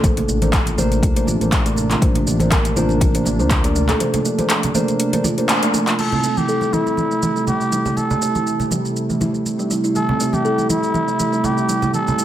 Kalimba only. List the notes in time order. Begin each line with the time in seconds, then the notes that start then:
0.17 A#3
0.28 A#3
0.42 F3
0.78 A3
1.16 A#3
1.28 F4
1.66 A3
1.77 A3
1.90 F4
2.02 A#3
2.15 D4
2.27 A#3
2.52 A#4
2.65 A#3
2.77 F4
3.15 A#3
3.26 A#3
3.40 A#3
3.64 A#3
3.76 A3
3.89 A4
4.14 A#3
4.25 A#3
4.39 F3
4.75 A3
5.13 A#3
5.25 F4
5.63 A3
5.74 A3
5.87 F4
5.99 A3
6.12 C4
6.23 A3
6.48 A4
6.62 A3
6.73 E4
7.11 A3
7.23 A3
7.36 A3
7.61 A3
7.72 G3
7.86 G4
8.11 A3
8.22 A3
8.35 E3
8.71 G3
9.10 A3
9.21 E4
9.59 G3
9.70 G3
9.84 E4
9.95 A3
10.09 C4
10.20 A3
10.45 A4
10.58 A3
10.70 E4
11.08 A3
11.19 A3
11.32 A3
11.57 A3
11.69 G3
11.82 G4
12.07 A3
12.18 A3